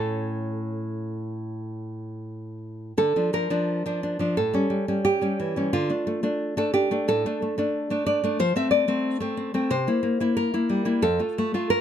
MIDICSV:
0, 0, Header, 1, 2, 480
1, 0, Start_track
1, 0, Key_signature, -1, "minor"
1, 0, Tempo, 784314
1, 1368, Tempo, 723764
1, 1863, Time_signature, 4, 2, 24, 8
1, 2328, Tempo, 685714
1, 4248, Tempo, 660066
1, 8163, End_track
2, 0, Start_track
2, 0, Title_t, "Nylon-string guitar"
2, 0, Program_c, 0, 24
2, 0, Note_on_c, 0, 45, 67
2, 0, Note_on_c, 0, 57, 53
2, 0, Note_on_c, 0, 61, 50
2, 0, Note_on_c, 0, 69, 79
2, 1591, Note_off_c, 0, 69, 0
2, 1819, Note_off_c, 0, 45, 0
2, 1824, Note_off_c, 0, 57, 0
2, 1831, Note_off_c, 0, 61, 0
2, 1859, Note_on_c, 0, 50, 61
2, 1861, Note_on_c, 0, 69, 79
2, 1974, Note_off_c, 0, 50, 0
2, 1981, Note_on_c, 0, 53, 43
2, 1985, Note_on_c, 0, 62, 42
2, 2085, Note_off_c, 0, 69, 0
2, 2087, Note_off_c, 0, 53, 0
2, 2094, Note_on_c, 0, 53, 47
2, 2099, Note_on_c, 0, 70, 76
2, 2202, Note_off_c, 0, 53, 0
2, 2203, Note_off_c, 0, 62, 0
2, 2209, Note_on_c, 0, 53, 53
2, 2213, Note_on_c, 0, 62, 55
2, 2441, Note_off_c, 0, 53, 0
2, 2446, Note_off_c, 0, 62, 0
2, 2450, Note_on_c, 0, 53, 47
2, 2454, Note_on_c, 0, 62, 56
2, 2564, Note_off_c, 0, 62, 0
2, 2573, Note_on_c, 0, 62, 45
2, 2677, Note_off_c, 0, 53, 0
2, 2684, Note_off_c, 0, 62, 0
2, 2685, Note_on_c, 0, 53, 47
2, 2692, Note_on_c, 0, 62, 49
2, 2783, Note_off_c, 0, 70, 0
2, 2795, Note_off_c, 0, 53, 0
2, 2799, Note_off_c, 0, 62, 0
2, 2810, Note_on_c, 0, 69, 72
2, 2811, Note_on_c, 0, 45, 58
2, 2924, Note_on_c, 0, 55, 53
2, 2926, Note_off_c, 0, 45, 0
2, 2931, Note_on_c, 0, 61, 55
2, 3031, Note_off_c, 0, 55, 0
2, 3040, Note_on_c, 0, 55, 45
2, 3159, Note_off_c, 0, 61, 0
2, 3160, Note_off_c, 0, 55, 0
2, 3168, Note_on_c, 0, 55, 42
2, 3168, Note_on_c, 0, 61, 51
2, 3269, Note_off_c, 0, 69, 0
2, 3283, Note_on_c, 0, 67, 78
2, 3392, Note_off_c, 0, 55, 0
2, 3397, Note_off_c, 0, 61, 0
2, 3400, Note_on_c, 0, 55, 43
2, 3406, Note_on_c, 0, 61, 51
2, 3527, Note_on_c, 0, 52, 44
2, 3636, Note_off_c, 0, 55, 0
2, 3642, Note_off_c, 0, 61, 0
2, 3644, Note_on_c, 0, 55, 46
2, 3650, Note_on_c, 0, 61, 50
2, 3749, Note_off_c, 0, 67, 0
2, 3756, Note_off_c, 0, 55, 0
2, 3759, Note_off_c, 0, 52, 0
2, 3759, Note_off_c, 0, 61, 0
2, 3762, Note_on_c, 0, 50, 64
2, 3762, Note_on_c, 0, 65, 79
2, 3877, Note_on_c, 0, 57, 41
2, 3881, Note_on_c, 0, 62, 41
2, 3884, Note_off_c, 0, 50, 0
2, 3989, Note_off_c, 0, 57, 0
2, 3998, Note_on_c, 0, 57, 46
2, 4102, Note_off_c, 0, 57, 0
2, 4106, Note_off_c, 0, 62, 0
2, 4110, Note_on_c, 0, 57, 49
2, 4114, Note_on_c, 0, 62, 56
2, 4338, Note_off_c, 0, 65, 0
2, 4344, Note_off_c, 0, 62, 0
2, 4345, Note_off_c, 0, 57, 0
2, 4353, Note_on_c, 0, 57, 49
2, 4354, Note_on_c, 0, 62, 52
2, 4359, Note_on_c, 0, 69, 76
2, 4470, Note_off_c, 0, 62, 0
2, 4471, Note_off_c, 0, 69, 0
2, 4473, Note_on_c, 0, 67, 73
2, 4479, Note_on_c, 0, 62, 46
2, 4592, Note_off_c, 0, 57, 0
2, 4597, Note_off_c, 0, 62, 0
2, 4600, Note_on_c, 0, 57, 49
2, 4605, Note_on_c, 0, 62, 49
2, 4710, Note_off_c, 0, 67, 0
2, 4724, Note_on_c, 0, 45, 50
2, 4728, Note_on_c, 0, 69, 81
2, 4841, Note_off_c, 0, 45, 0
2, 4846, Note_off_c, 0, 57, 0
2, 4847, Note_off_c, 0, 62, 0
2, 4854, Note_on_c, 0, 57, 50
2, 4856, Note_on_c, 0, 62, 50
2, 4964, Note_off_c, 0, 57, 0
2, 4973, Note_on_c, 0, 57, 43
2, 5078, Note_off_c, 0, 57, 0
2, 5080, Note_off_c, 0, 62, 0
2, 5086, Note_on_c, 0, 57, 45
2, 5091, Note_on_c, 0, 62, 50
2, 5315, Note_off_c, 0, 57, 0
2, 5317, Note_off_c, 0, 62, 0
2, 5323, Note_on_c, 0, 57, 43
2, 5328, Note_on_c, 0, 62, 46
2, 5411, Note_off_c, 0, 69, 0
2, 5432, Note_off_c, 0, 62, 0
2, 5440, Note_on_c, 0, 62, 51
2, 5440, Note_on_c, 0, 74, 70
2, 5557, Note_off_c, 0, 57, 0
2, 5560, Note_off_c, 0, 62, 0
2, 5564, Note_on_c, 0, 57, 48
2, 5571, Note_on_c, 0, 62, 54
2, 5664, Note_off_c, 0, 74, 0
2, 5667, Note_off_c, 0, 57, 0
2, 5669, Note_off_c, 0, 62, 0
2, 5680, Note_on_c, 0, 53, 66
2, 5683, Note_on_c, 0, 72, 89
2, 5792, Note_off_c, 0, 53, 0
2, 5796, Note_off_c, 0, 72, 0
2, 5797, Note_on_c, 0, 57, 39
2, 5801, Note_on_c, 0, 60, 45
2, 5804, Note_on_c, 0, 76, 70
2, 5902, Note_off_c, 0, 57, 0
2, 5905, Note_off_c, 0, 76, 0
2, 5908, Note_on_c, 0, 74, 76
2, 5911, Note_on_c, 0, 57, 44
2, 6022, Note_off_c, 0, 57, 0
2, 6025, Note_off_c, 0, 60, 0
2, 6031, Note_on_c, 0, 57, 47
2, 6035, Note_on_c, 0, 60, 57
2, 6260, Note_off_c, 0, 57, 0
2, 6266, Note_off_c, 0, 60, 0
2, 6268, Note_on_c, 0, 57, 46
2, 6277, Note_on_c, 0, 60, 61
2, 6383, Note_off_c, 0, 60, 0
2, 6392, Note_on_c, 0, 60, 56
2, 6506, Note_off_c, 0, 57, 0
2, 6506, Note_off_c, 0, 60, 0
2, 6513, Note_on_c, 0, 57, 48
2, 6517, Note_on_c, 0, 60, 59
2, 6599, Note_off_c, 0, 74, 0
2, 6621, Note_off_c, 0, 57, 0
2, 6621, Note_off_c, 0, 60, 0
2, 6632, Note_on_c, 0, 48, 59
2, 6635, Note_on_c, 0, 72, 76
2, 6749, Note_off_c, 0, 48, 0
2, 6756, Note_on_c, 0, 58, 47
2, 6760, Note_on_c, 0, 64, 60
2, 6859, Note_off_c, 0, 58, 0
2, 6868, Note_on_c, 0, 58, 51
2, 6987, Note_off_c, 0, 58, 0
2, 6992, Note_off_c, 0, 64, 0
2, 6996, Note_on_c, 0, 58, 45
2, 7001, Note_on_c, 0, 64, 60
2, 7093, Note_off_c, 0, 72, 0
2, 7114, Note_on_c, 0, 70, 81
2, 7229, Note_off_c, 0, 58, 0
2, 7232, Note_off_c, 0, 64, 0
2, 7238, Note_on_c, 0, 58, 45
2, 7241, Note_on_c, 0, 64, 54
2, 7353, Note_on_c, 0, 55, 47
2, 7459, Note_off_c, 0, 58, 0
2, 7461, Note_off_c, 0, 64, 0
2, 7467, Note_on_c, 0, 58, 49
2, 7471, Note_on_c, 0, 64, 54
2, 7578, Note_off_c, 0, 70, 0
2, 7580, Note_off_c, 0, 58, 0
2, 7582, Note_off_c, 0, 64, 0
2, 7591, Note_on_c, 0, 41, 71
2, 7593, Note_on_c, 0, 69, 77
2, 7596, Note_off_c, 0, 55, 0
2, 7713, Note_off_c, 0, 41, 0
2, 7716, Note_on_c, 0, 57, 40
2, 7720, Note_on_c, 0, 65, 47
2, 7844, Note_off_c, 0, 57, 0
2, 7853, Note_on_c, 0, 57, 54
2, 7959, Note_off_c, 0, 57, 0
2, 7962, Note_off_c, 0, 65, 0
2, 7968, Note_on_c, 0, 57, 51
2, 7971, Note_on_c, 0, 65, 51
2, 8064, Note_off_c, 0, 69, 0
2, 8084, Note_on_c, 0, 70, 86
2, 8163, Note_off_c, 0, 57, 0
2, 8163, Note_off_c, 0, 65, 0
2, 8163, Note_off_c, 0, 70, 0
2, 8163, End_track
0, 0, End_of_file